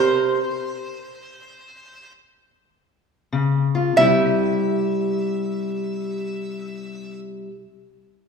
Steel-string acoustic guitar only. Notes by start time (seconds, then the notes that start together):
Already playing: C3 G4
3.33 C#3
3.75 F4
3.96 C3 G3 E4
4.02 G4